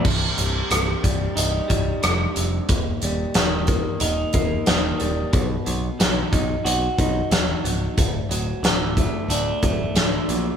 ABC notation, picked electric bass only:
X:1
M:4/4
L:1/8
Q:1/4=91
K:Cdor
V:1 name="Picked electric bass" clef=bass
C,,, C,,, C,,, C,,, C,,, C,,, F,,, F,,, | E,,, E,,, E,,,2 E,,, E,,, E,,, E,,, | =B,,, B,,, B,,, B,,, B,,, B,,, ^D,,, _D,,, | D,,, D,,, D,,,2 D,,, D,,, D,,, B,,, |]